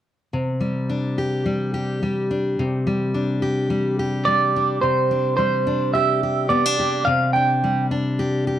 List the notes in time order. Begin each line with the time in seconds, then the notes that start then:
0.33 C3
0.60 G3
0.89 D4
1.18 G4
1.46 G3
1.74 G4
2.02 G3
2.31 D4
2.59 C3
2.87 G3
3.14 D4
3.42 G4
3.70 G3
3.99 G4
4.25 G3 D5
4.56 D4
4.81 C3 C5
5.11 D4
5.37 G3 C5
5.67 D4
5.94 G4 E5
6.23 G4
6.49 B3 D5
6.66 D4
6.79 G4
7.05 C3 F5
7.33 D4 G5
7.64 G3
7.91 D4
8.19 G4
8.47 G4